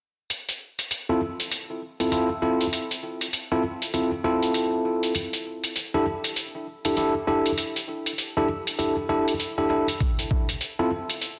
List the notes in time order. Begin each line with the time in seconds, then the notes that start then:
0.30 closed hi-hat
0.49 closed hi-hat
0.79 closed hi-hat
0.91 closed hi-hat
1.09 C4 E4 F4 A4
1.40 closed hi-hat
1.52 closed hi-hat
2.00 C4 E4 F4 A4, closed hi-hat
2.12 C4 E4 F4 A4, closed hi-hat
2.42 C4 E4 F4 A4
2.61 closed hi-hat
2.73 closed hi-hat
2.91 closed hi-hat
3.21 closed hi-hat
3.33 closed hi-hat
3.52 C4 E4 F4 A4
3.82 closed hi-hat
3.94 C4 E4 F4 A4, closed hi-hat
4.24 C4 E4 F4 A4
4.43 closed hi-hat
4.54 closed hi-hat
5.03 closed hi-hat
5.15 closed hi-hat
5.33 closed hi-hat
5.64 closed hi-hat
5.76 closed hi-hat
5.94 D4 E4 G4 A4
6.24 closed hi-hat
6.36 closed hi-hat
6.85 D4 E4 G4 A4, closed hi-hat
6.97 D4 E4 G4 A4, closed hi-hat
7.27 D4 E4 G4 A4
7.46 closed hi-hat
7.58 closed hi-hat
7.76 closed hi-hat
8.06 closed hi-hat
8.18 closed hi-hat
8.37 D4 E4 G4 A4
8.67 closed hi-hat
8.79 D4 E4 G4 A4, closed hi-hat
9.09 D4 E4 G4 A4
9.28 closed hi-hat
9.40 closed hi-hat
9.58 D4 E4 G4 A4
9.70 D4 E4 G4 A4
9.88 closed hi-hat
10.00 kick, closed hi-hat
10.19 closed hi-hat
10.31 kick
10.49 closed hi-hat
10.61 closed hi-hat
10.79 C4 E4 F4 A4
11.10 closed hi-hat
11.21 closed hi-hat